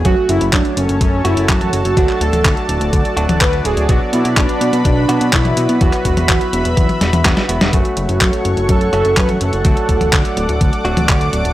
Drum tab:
HH |x-xxxxxxx-xxxxxx|x-xxxxxxxxxxxxxx|x-xxxxxxx-xxxxxx|xxxxxxxxxxxxxxxx|
CP |----x-------x---|-x--x-------x---|----x-------x---|-x--x-------x---|
SD |----------------|----------------|----------------|----------o-oo-o|
T1 |-------------o--|---o-------o----|-------------o--|---o-----o-o----|
BD |o---o---o---o---|o---o---o---o---|o---o---o---o---|o-o-o---o---o---|

HH |xxxxxxxxxxxxxxxx|xxxxxxxxxxxxxxxx|
CP |----x-------x---|----x-------x---|
SD |----------------|----------------|
T1 |-------------o--|---o-------o----|
BD |o---o---o---o---|o-o-o---o---o---|